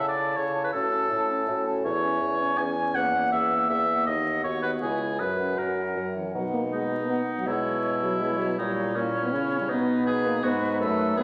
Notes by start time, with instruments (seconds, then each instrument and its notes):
Already playing: clarinet E4, french horn A4, flute A5
0.00 bassoon C#3
0.08 oboe D5
0.18 clarinet E4, flute A5
0.37 bassoon C#3, oboe C#5
0.55 clarinet E4, flute A5
0.64 oboe B4
0.73 bassoon A2, clarinet C#4, french horn F#4, oboe A4, flute A5
0.92 clarinet C#4, flute A5
1.10 bassoon A2, french horn E4
1.29 clarinet C#4, flute A5
1.48 bassoon A2, french horn F#4
1.66 clarinet C#4, flute A5
1.85 bassoon E2, french horn E4, oboe C#5
2.03 clarinet C#4, flute G#5
2.22 bassoon E2
2.39 clarinet C#4, flute G#5
2.58 bassoon E2, french horn C#4, oboe G#5
2.76 clarinet C#4, flute G#5
2.94 bassoon E2, clarinet A#3, flute F#5, oboe F#5
3.13 clarinet A#3, flute F#5
3.32 bassoon E2, oboe E5
3.50 clarinet A#3, flute F#5
3.70 bassoon E2, oboe E5
3.87 clarinet A#3, flute F#5
4.06 bassoon D#2, french horn D#4, oboe D#5
4.25 clarinet B3, flute F#5
4.44 bassoon D#2, french horn F#4, oboe C#5
4.62 clarinet B3, oboe B4, flute F#5
4.81 bassoon C#2, clarinet E4, french horn E4, oboe G#4, flute G#5
5.00 clarinet E4, flute G#5
5.19 bassoon F#2, french horn F#4, oboe B4
5.38 clarinet C#4, flute F#5
5.58 bassoon F#2, oboe A#4
5.77 clarinet C#4, flute F#5
5.97 bassoon F#2
6.15 french horn E3, clarinet C#4, flute F#5
6.34 bassoon B2, french horn F#3, clarinet D#4, flute F#5
6.53 french horn A#3
6.72 french horn G#3, oboe D#4
7.01 french horn A#3
7.09 french horn B3, clarinet D#4, flute F#5
7.38 french horn F#3
7.46 bassoon B2, french horn G#3, clarinet E4, oboe E4, flute C#5
8.03 french horn F#3
8.21 french horn G#3, clarinet E4, flute C#5
8.40 french horn F#3
8.58 bassoon A#2, french horn G3, oboe D#4, clarinet E4, flute C#5
8.95 french horn A#3, oboe C#4, clarinet E4, flute C#5
9.24 french horn B3
9.32 bassoon C#3, french horn C#4, clarinet E4, flute C#5
9.61 french horn G3
9.68 bassoon B2, french horn B3, oboe D#4, clarinet D#4, flute B4
10.07 oboe G#4
10.25 french horn A#3
10.43 bassoon G#2, french horn B3, clarinet D#4, oboe F#4, flute B4
10.80 bassoon F#2, french horn A3, clarinet D#4, oboe A4, flute B4
11.17 french horn B3, clarinet D#4, oboe G#4, flute B4